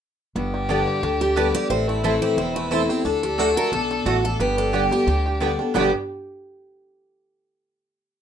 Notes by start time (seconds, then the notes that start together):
0.36 G1 G2 B3 G4
0.54 G3
0.69 D3 G3 B3 D4 G4 D5 A5
0.88 G4
1.03 D2 D3 D4
1.21 G3 G4
1.36 D3 G3 B3 G4 B4 D5 A5
1.55 G4 D5
1.70 A1 A2 C4 E4 C5
1.88 A3 E4
2.03 E3 A3 C4 E4 A4 C5 A5
2.22 G4 C5
2.37 E1 E2 C4 C5
2.56 A3 B4
2.71 E3 A3 C4 E4 A4 C5 A5
2.89 C4 E4 G4
3.05 D2 D3 D4 F#4 A4
3.23 D4 G4
3.38 D3 A3 D4 F#4 A4 D5 F#5
3.56 A3 D4 F#4 A#4
3.72 B1 B2 D4 A4
3.91 D4
4.05 A1 A2 A3 F#4 D5 F#5
4.24 D4 A4
4.40 G1 G2 B3 G4 B4
4.58 D4 A4
4.73 D3 G3 B3 G4 D5 G5
4.91 G3 B3 G4
5.07 D2 D3 D4
5.26 G4
5.40 D3 G3 B3 D4 G4 D5 G5
5.59 B3 D4 G4
5.74 G1 G2 B2 D3 G3 B3 D4 G4 D5 G5
5.79 D4 G4